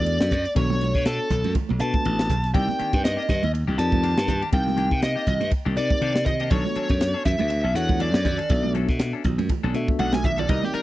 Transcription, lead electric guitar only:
0.00 0.52 D5 medium
0.57 1.03 C#5 medium
1.06 1.52 A4 medium
1.81 2.51 A5 medium
2.54 3.01 G5 medium
3.04 3.50 D#5 medium
3.78 4.49 A5 loud
4.54 5.00 G5 medium
5.03 5.49 D#5 medium
5.77 6.23 D5 medium
6.26 6.51 D#5 loud
6.51 7.22 C#5 medium
7.26 7.72 E5 medium
7.76 8.00 F#5 loud
8.01 8.72 D5 medium
10.00 10.13 F#5 medium
10.15 10.25 G#5 loud
10.25 10.39 E5 medium
10.39 10.50 D5 medium
10.50 10.63 D#5 medium
10.65 10.74 G4 medium
10.75 10.82 A#4 medium

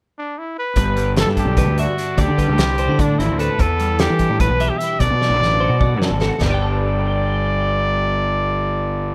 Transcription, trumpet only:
0.18 0.40 D4 medium
0.38 0.58 E4 medium
0.59 1.14 B4 medium
1.21 1.29 A4 medium
1.39 1.81 G4 medium
1.80 2.22 F#4 medium
2.21 3.02 G4 medium
3.01 3.20 D4 medium
3.19 3.40 E4 medium
3.39 3.62 B4 medium
3.60 4.02 A4 medium
4.00 4.42 G4 medium
4.40 4.71 B4 medium
4.69 4.79 G4 medium
4.78 5.01 E5 medium
5.00 6.01 D5 loud
6.39 9.15 D5 medium

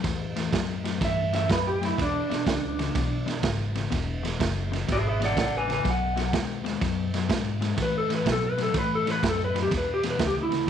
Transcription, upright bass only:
0.04 0.51 E2 medium
0.53 0.99 F#2 medium
1.01 1.48 G2 medium
1.50 1.96 F#2 medium
1.98 2.28 E2 medium
2.31 muted upright bass stroke soft
2.46 2.93 C#2 medium
2.95 3.42 B1 medium
3.44 3.90 G#1 medium
3.92 4.38 E1 medium
4.40 4.87 F#1 medium
4.89 5.35 G#1 medium
5.37 5.83 A1 medium
5.85 6.32 B1 medium
6.33 6.80 D#2 medium
6.82 7.28 F#2 medium
7.30 7.76 G#2 medium
7.78 8.25 A2 medium
8.26 8.73 B2 medium
8.74 9.21 A2 medium
9.23 9.70 F#2 medium
9.71 10.18 E2 medium
10.20 10.66 D2 medium

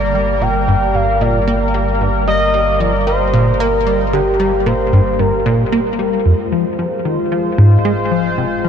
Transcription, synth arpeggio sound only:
0.15 0.27 G3 medium
0.42 0.49 A#2 medium
0.68 0.75 G2 medium
0.95 1.07 G2 medium
1.21 1.40 A#2 loud
1.48 1.55 A#3 loud
1.74 1.93 G3 medium
2.01 2.08 G2 medium
2.27 2.40 G3 medium
2.54 2.61 G3 medium
2.80 2.93 F3 medium
3.07 3.25 G3 medium
3.34 3.52 A#2 loud
3.60 3.68 A#3 loud
3.87 4.05 G3 medium
4.13 4.21 D3 medium
4.40 4.52 G3 medium
4.66 4.74 A#2 medium
4.93 5.00 G2 loud
5.19 5.32 G2 medium
5.46 5.64 A#2 loud
5.72 5.80 A#3 loud
5.99 6.18 G3 medium
6.25 6.33 F2 medium
6.52 6.65 F3 medium
6.79 6.86 F3 medium
7.05 7.18 D#3 medium
7.32 7.50 F3 medium
7.58 7.77 G#2 loud
7.85 7.92 G#3 loud
8.11 8.30 F3 medium
8.38 8.45 C3 medium
8.65 8.69 F3 medium

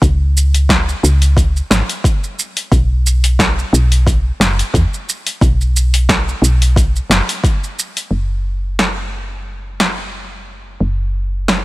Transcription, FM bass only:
0.02 0.94 C#2 loud
1.03 1.61 C#2 medium
1.71 1.82 G#1 medium
2.72 3.63 B1 loud
3.73 4.31 B1 loud
4.40 4.62 F#1 loud
4.74 4.85 E2 medium
5.41 6.33 B1 loud
6.42 7.00 B1 medium
7.10 7.21 F#1 medium
8.11 10.77 F#1 medium
10.80 11.65 F#1 medium

